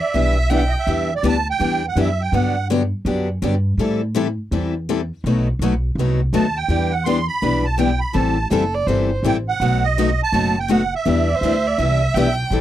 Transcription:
Already playing: accordion E5
0.01 violin D5
0.14 upright bass B1, steel-string acoustic guitar E3 G3 B3 D4 E4 G4 B4, violin E5
0.49 steel-string acoustic guitar E3 G3 B3 D4 E4 G4 B4, violin G5
0.56 accordion F#5
0.67 accordion D#5
0.78 accordion E5
0.87 upright bass E2, steel-string acoustic guitar E3 G3 B3 D4 E4 G4 B4
1.16 accordion D5
1.23 upright bass D2, steel-string acoustic guitar E3 G3 B3 D4 E4 G4 B4
1.29 accordion A5
1.50 accordion G5
1.59 upright bass E2, steel-string acoustic guitar E3 G3 B3 D4 E4 G4 B4
1.88 accordion F#5
1.96 upright bass F#2, steel-string acoustic guitar E3 G3 B3 D4 E4 G4 B4
2.01 accordion E5
2.22 accordion G5
2.32 upright bass G2, steel-string acoustic guitar D3 F#3 B3 D4 G4, accordion F#5
2.70 steel-string acoustic guitar D3 F#3 B3 D4 G4
3.05 upright bass F#2, steel-string acoustic guitar D3 F#3 B3 D4 G4
3.42 upright bass G2, steel-string acoustic guitar D3 F#3 B3 D4 G4
3.78 upright bass A2, steel-string acoustic guitar E3 G3 C4 E4
3.82 steel-string acoustic guitar A4
4.16 steel-string acoustic guitar E3 G3 C4 E4 A4
4.51 upright bass E2, steel-string acoustic guitar E3 G3 C4 E4 A4
4.90 steel-string acoustic guitar E3 G3 C4 E4 A4
5.24 upright bass B1, steel-string acoustic guitar B2 F#3 A3 D#4 F#4
5.28 steel-string acoustic guitar B4
5.59 upright bass B1, steel-string acoustic guitar B2 F#3 A3 D#4
5.64 steel-string acoustic guitar F#4 B4
5.95 upright bass C2, steel-string acoustic guitar B2 F#3 A3 D#4 F#4 B4
6.33 upright bass D#2, steel-string acoustic guitar B2 F#3 A3 D#4 F#4 B4, accordion A5
6.57 accordion G5
6.68 upright bass E2, steel-string acoustic guitar E3 G3 B3 D4 E4 G4 B4
6.91 accordion F#5
7.05 steel-string acoustic guitar E3 G3 B3 D4 E4 G4 B4, accordion C6
7.28 accordion B5
7.42 upright bass B1, steel-string acoustic guitar E3 G3 B3 D4 E4 G4 B4
7.65 accordion A5
7.78 steel-string acoustic guitar E3 G3 B3 D4 E4 G4 B4, accordion G5
8.00 accordion B5
8.14 upright bass A1, steel-string acoustic guitar E3 G3 C4 E4 A4, accordion A5
8.50 upright bass F#1, steel-string acoustic guitar E3 G3 C4 E4 A4, violin A4
8.74 violin D5
8.87 upright bass G1, steel-string acoustic guitar E3 G3 C4 E4 A4, violin C5
9.23 upright bass A1, steel-string acoustic guitar E3 G3 C4 E4 A4
9.27 accordion G5
9.49 accordion F#5
9.60 upright bass B1, steel-string acoustic guitar B2 F#3 A3 D#4 F#4 B4
9.84 accordion D#5
9.97 steel-string acoustic guitar B2 F#3 A3 D#4 F#4 B4
10.23 accordion A5
10.32 upright bass F#1, steel-string acoustic guitar B2 F#3 A3 D#4 F#4 B4
10.59 accordion G5
10.70 steel-string acoustic guitar B2 F#3 A3 D#4 F#4 B4, accordion F#5
10.95 accordion E5
11.06 upright bass E2, steel-string acoustic guitar E3 G3 B3 D4 E4 G4 B4
11.28 violin D5
11.35 violin C5
11.41 upright bass D2, steel-string acoustic guitar E3 G3 B3 D4 E4 G4 B4
11.67 violin D5
11.78 upright bass C2, steel-string acoustic guitar E3 G3 B3 D4 G4, violin E5
11.82 steel-string acoustic guitar E4 B4
12.14 upright bass B1, steel-string acoustic guitar E3 G3 B3 D4 E4 G4 B4, violin G5
12.50 upright bass A1, steel-string acoustic guitar E3 G3 C4 E4
12.54 steel-string acoustic guitar A4

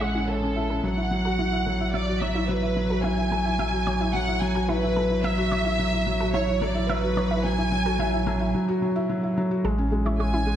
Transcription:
Already playing: sub bass A1, felt piano C#4 E4
0.00 felt piano G#3, synth arpeggio sound C#5, violin section F#5
0.15 felt piano C#4, synth arpeggio sound E4
0.28 violin section A4, felt piano C#5
0.43 felt piano C#4
0.56 felt piano E4
0.70 felt piano C#4, synth arpeggio sound A4
0.84 sub bass A1, felt piano F#3, violin section F#5
0.97 felt piano E4
1.11 felt piano F#3
1.25 felt piano F#4, synth arpeggio sound A4
1.39 felt piano F#3, synth arpeggio sound E4
1.53 felt piano E4
1.66 felt piano F#3, synth arpeggio sound A4
1.80 felt piano E4
1.94 felt piano F#3, violin section D5, synth arpeggio sound E5
2.08 felt piano F#4
2.22 felt piano F#3, synth arpeggio sound C#5, violin section E5
2.35 synth arpeggio sound E4, felt piano E4
2.49 felt piano F#3, violin section B4
2.62 felt piano E4
2.77 felt piano F#3
2.90 felt piano F#4, synth arpeggio sound A4
3.03 felt piano F#3, synth arpeggio sound E4, violin section G#5
3.17 felt piano E4
3.31 felt piano F#3, synth arpeggio sound A4
3.45 felt piano E4
3.59 felt piano F#3, synth arpeggio sound E5
3.73 felt piano F#4
3.87 felt piano F#3, synth arpeggio sound C#5
4.01 synth arpeggio sound E4, felt piano E4
4.14 felt piano F#3, violin section F#5
4.28 felt piano E4
4.41 felt piano F#3, violin section G#5
4.55 felt piano F#4, synth arpeggio sound A4
4.68 felt piano F#3, synth arpeggio sound E4, violin section B4
4.83 felt piano E4
4.96 felt piano F#3, synth arpeggio sound A4
5.10 felt piano E4
5.23 felt piano F#3, violin section E5, synth arpeggio sound E5
5.38 felt piano F#4
5.52 felt piano F#3, synth arpeggio sound C#5
5.65 synth arpeggio sound E4, felt piano E4
5.79 felt piano F#3
5.93 felt piano E4
6.07 felt piano F#3
6.20 felt piano F#4, synth arpeggio sound A4
6.33 felt piano F#3, synth arpeggio sound E4, violin section C#5
6.48 felt piano E4
6.62 felt piano F#3, synth arpeggio sound A4, violin section D5
6.75 felt piano E4
6.88 felt piano F#3, violin section B4, synth arpeggio sound E5
7.03 felt piano F#4
7.17 felt piano F#3, synth arpeggio sound C#5
7.30 felt piano E4, synth arpeggio sound E4
7.44 felt piano F#3, violin section G#5
7.58 felt piano E4
7.72 felt piano F#3
7.86 felt piano F#4, synth arpeggio sound A4
7.99 felt piano F#3, synth arpeggio sound E4
8.13 felt piano E4
8.27 felt piano F#3, synth arpeggio sound A4
8.41 felt piano E4
8.54 felt piano F#3
8.68 felt piano F#4
8.82 felt piano F#3
8.96 felt piano E4
9.09 felt piano F#3
9.23 felt piano E4
9.37 felt piano F#3
9.51 felt piano F#4
9.64 sub bass A1, felt piano G#3, synth arpeggio sound A4
9.78 felt piano C#4
9.92 felt piano G#3
10.05 felt piano E4, synth arpeggio sound C#5
10.19 felt piano G#3, synth arpeggio sound C#5, violin section G#5
10.33 felt piano C#4, synth arpeggio sound E4
10.47 felt piano G#3

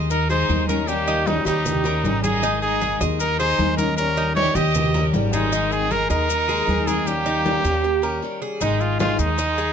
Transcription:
Already playing: upright bass D#2, cuban tres D#5
0.10 violin section D#4, trumpet A#4, muted steel-string acoustic guitar stroke, high conga, maracas
0.29 steel-string acoustic guitar G#3 D#4 G#4, violin section D#4, cuban tres G#4, trumpet C5, high conga, maracas
0.49 upright bass D#2, steel-string acoustic guitar D#3 G#3 D#4 G#4, high conga, maracas
0.68 violin section C#4, trumpet A#4, cuban tres A#4, high conga, maracas
0.87 steel-string acoustic guitar D#3 G3 C#4 G4, violin section A#3, trumpet G4, high conga, maracas
1.08 cuban tres D#4, high conga, maracas
1.26 steel-string acoustic guitar D#3 G3 C#4 G4, violin section G3, trumpet D#4, high conga, maracas
1.45 upright bass D#2, violin section G3, steel-string acoustic guitar G3 C#4 G4, trumpet D#4, cuban tres G4, high conga, maracas
1.65 muted steel-string acoustic guitar stroke, high conga, low conga, maracas
1.84 steel-string acoustic guitar G3 C#4 G4, cuban tres A#4, high conga, maracas
2.04 upright bass G#1, steel-string acoustic guitar D#3 G3 C#4 G4, high conga, maracas
2.23 violin section D#4, trumpet G#4, cuban tres G#4, high conga, maracas
2.42 steel-string acoustic guitar D#3 G#3 D#4 G#4, cuban tres D#4, high conga, maracas
2.62 violin section D#4, trumpet G#4, high conga, maracas
2.81 steel-string acoustic guitar D#3 G#3 D#4 G#4, cuban tres G#4, high conga, maracas
3.01 upright bass D#2, steel-string acoustic guitar G#3 D#4 G#4, cuban tres D#5, high conga, maracas
3.20 violin section D#4, trumpet A#4, muted steel-string acoustic guitar stroke, high conga, maracas
3.39 steel-string acoustic guitar G#3 D#4 G#4, violin section D#4, cuban tres G#4, trumpet C5, high conga, maracas
3.59 upright bass D#2, steel-string acoustic guitar D#3 G#3 D#4 G#4, high conga, maracas
3.77 violin section C#4, trumpet A#4, cuban tres A#4, high conga, maracas
3.97 steel-string acoustic guitar D#3 G3 C#4 G4, violin section C#4, trumpet A#4, high conga, maracas
4.17 cuban tres D#4, high conga, maracas
4.35 steel-string acoustic guitar D#3 G3 C#4 G4, violin section G4, trumpet C#5, high conga, maracas
4.55 upright bass D#2, steel-string acoustic guitar G3 C#4 G4, violin section G4, cuban tres G4, trumpet D#5, high conga, maracas
4.75 muted steel-string acoustic guitar stroke, high conga, low conga, maracas
4.94 steel-string acoustic guitar G3 C#4 G4, cuban tres A#4, high conga, low conga, maracas
5.13 upright bass G#1, steel-string acoustic guitar D#3 G3 C#4 G4, high conga, maracas
5.32 violin section G#3, trumpet D#4, cuban tres G#4, high conga, maracas
5.52 steel-string acoustic guitar D#3 G#3 D#4 G#4, cuban tres D#4, high conga, maracas
5.71 violin section C4, trumpet G#4, high conga, maracas
5.90 steel-string acoustic guitar D#3 G#3 D#4 G#4, violin section D#4, cuban tres G#4, trumpet A#4, high conga, maracas
6.10 upright bass D#2, steel-string acoustic guitar G#3 D#4 G#4, violin section D#4, trumpet A#4, cuban tres D#5, high conga, maracas
6.29 muted steel-string acoustic guitar stroke, high conga, maracas
6.48 steel-string acoustic guitar G#3 D#4 G#4, cuban tres G#4, high conga, maracas
6.67 upright bass D#2, steel-string acoustic guitar D#3 G#3 D#4 G#4, high conga, maracas
6.87 violin section C4, trumpet G#4, cuban tres A#4, high conga, maracas
7.06 steel-string acoustic guitar D#3 G3 C#4 G4, violin section A#3, trumpet G4, high conga, maracas
7.26 cuban tres D#4, high conga, maracas
7.45 steel-string acoustic guitar D#3 G3 C#4 G4, high conga, maracas
7.64 upright bass D#2, steel-string acoustic guitar G3 C#4 G4, cuban tres G4, high conga, maracas
7.84 muted steel-string acoustic guitar stroke
8.02 steel-string acoustic guitar G3 C#4 G4, cuban tres A#4
8.22 steel-string acoustic guitar D#3 G3 C#4 G4
8.42 cuban tres G#4
8.61 upright bass G#1, steel-string acoustic guitar D#3 G#3 D#4 G#4, violin section G#3, cuban tres D#4, trumpet D#4, high conga, maracas
8.80 violin section G#3, trumpet F4, high conga, maracas
8.99 steel-string acoustic guitar D#3 G#3 D#4 G#4, violin section G#3, trumpet F4, cuban tres G#4, high conga, maracas
9.19 upright bass D#2, violin section G#3, trumpet D#4, high conga, maracas
9.38 cuban tres D#5, muted steel-string acoustic guitar stroke, high conga, maracas
9.58 cuban tres G#4, high conga, maracas

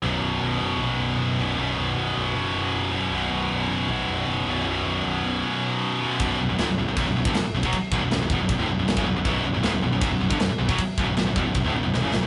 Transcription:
0.02 picked electric bass B0, distorted electric guitar B1 F#2 B2
0.21 picked electric bass B0
0.41 picked electric bass B0
0.61 picked electric bass F#1
0.78 picked electric bass A#1, distorted electric guitar B1
0.82 distorted electric guitar F#2 B2
0.98 picked electric bass B0
1.18 picked electric bass F#1
1.37 picked electric bass B0, distorted electric guitar F#2 B2
1.42 distorted electric guitar B1
1.56 picked electric bass B0, distorted electric guitar B1 F#2
1.61 distorted electric guitar B2
1.77 picked electric bass B0
1.95 picked electric bass B0
2.16 picked electric bass B0
2.34 picked electric bass F#1, distorted electric guitar B1 F#2 B2
2.55 picked electric bass F#1
2.74 picked electric bass F#1
2.92 picked electric bass F#1, distorted electric guitar B1 F#2 B2
3.11 picked electric bass B0, distorted electric guitar B1 F#2 B2
3.30 picked electric bass B0
3.50 picked electric bass B0
3.69 picked electric bass F#1
3.88 picked electric bass A#1, distorted electric guitar B1 F#2 B2
4.07 picked electric bass B0
4.27 picked electric bass F#1
4.45 picked electric bass B0, distorted electric guitar F#2 B2
4.51 distorted electric guitar B1
4.65 picked electric bass B0, distorted electric guitar B1 F#2 B2
4.84 picked electric bass B0
5.04 picked electric bass B0
5.22 picked electric bass B0
5.43 distorted electric guitar B1 F#2 B2
6.00 distorted electric guitar B1 F#2 B2
6.19 picked electric bass B0, distorted electric guitar B1 F#2 B2, kick, crash
6.38 picked electric bass B0, distorted electric guitar B1 F#2
6.47 picked electric bass B0, distorted electric guitar B1 F#2
6.57 picked electric bass C#1, distorted electric guitar C#2 G#2, snare, crash
6.67 picked electric bass B0, distorted electric guitar B1 F#2
6.78 picked electric bass B0, distorted electric guitar B1 F#2
6.86 picked electric bass B0, distorted electric guitar B1 F#2
6.97 picked electric bass B0, distorted electric guitar B1 F#2, kick, crash
7.06 picked electric bass B0, distorted electric guitar B1 F#2
7.15 picked electric bass B0, distorted electric guitar B1 F#2
7.25 picked electric bass G1, distorted electric guitar G2 D3, kick
7.33 picked electric bass B0, distorted electric guitar B1 F#2, snare, crash
7.42 muted picked electric bass stroke, muted distorted electric guitar stroke
7.51 picked electric bass B0, distorted electric guitar B1 F#2
7.63 picked electric bass B1, distorted electric guitar B2 F#3, kick
7.72 muted picked electric bass stroke, muted distorted electric guitar stroke, kick, crash
7.91 picked electric bass B0, distorted electric guitar B1 F#2, kick
8.00 picked electric bass B0, distorted electric guitar B1 F#2
8.10 picked electric bass B0, distorted electric guitar B1 F#2, snare, crash
8.19 picked electric bass B0, distorted electric guitar B1 F#2
8.30 picked electric bass E1, distorted electric guitar E2 B2, kick
8.38 picked electric bass B0, distorted electric guitar B1 F#2
8.48 picked electric bass B0, distorted electric guitar B1 F#2, kick, crash
8.58 picked electric bass D1, distorted electric guitar D2 A2
8.67 picked electric bass B0, distorted electric guitar B1 F#2
8.77 picked electric bass B0, distorted electric guitar B1 F#2
8.85 picked electric bass B0, distorted electric guitar B1 F#2, snare, crash
8.97 picked electric bass F#1, distorted electric guitar F#2 C#3, kick
9.06 picked electric bass B0, distorted electric guitar B1 F#2
9.15 picked electric bass B0, distorted electric guitar B1 F#2
9.25 picked electric bass B0, distorted electric guitar B1 F#2 B2, kick, crash
9.42 picked electric bass B0, distorted electric guitar B1 F#2
9.52 picked electric bass B0, distorted electric guitar B1 F#2
9.62 picked electric bass C#1, distorted electric guitar C#2 G#2, snare, crash
9.71 picked electric bass B0, distorted electric guitar B1 F#2
9.80 picked electric bass B0, distorted electric guitar B1 F#2
9.90 picked electric bass B0, distorted electric guitar B1 F#2
10.01 picked electric bass B0, distorted electric guitar B1 F#2, kick, crash
10.09 picked electric bass B0, distorted electric guitar B1 F#2
10.19 picked electric bass B0, distorted electric guitar B1 F#2
10.30 picked electric bass G1, distorted electric guitar G2 D3, kick
10.39 picked electric bass B0, distorted electric guitar B1 F#2, snare, crash
10.49 muted picked electric bass stroke, muted distorted electric guitar stroke
10.59 picked electric bass B0, distorted electric guitar B1 F#2
10.68 picked electric bass B1, distorted electric guitar B2 F#3, kick
10.78 muted picked electric bass stroke, muted distorted electric guitar stroke, kick, crash
10.97 picked electric bass B0, distorted electric guitar B1 F#2, kick
11.07 picked electric bass B0, distorted electric guitar B1 F#2
11.16 picked electric bass B0, distorted electric guitar B1 F#2, snare, crash
11.26 picked electric bass B0, distorted electric guitar B1 F#2
11.36 picked electric bass E1, distorted electric guitar E2 B2, kick
11.45 picked electric bass B0, distorted electric guitar B1 F#2
11.54 picked electric bass B0, distorted electric guitar B1 F#2, kick, crash
11.63 picked electric bass D1, distorted electric guitar D2 A2
11.73 picked electric bass B0, distorted electric guitar B1 F#2
11.83 picked electric bass B0, distorted electric guitar B1 F#2
11.94 picked electric bass B0, distorted electric guitar B1 F#2, snare
12.02 picked electric bass F#1, distorted electric guitar F#2 C#3
12.12 picked electric bass B0, distorted electric guitar B1 F#2, snare
12.22 picked electric bass B0, distorted electric guitar B1 F#2

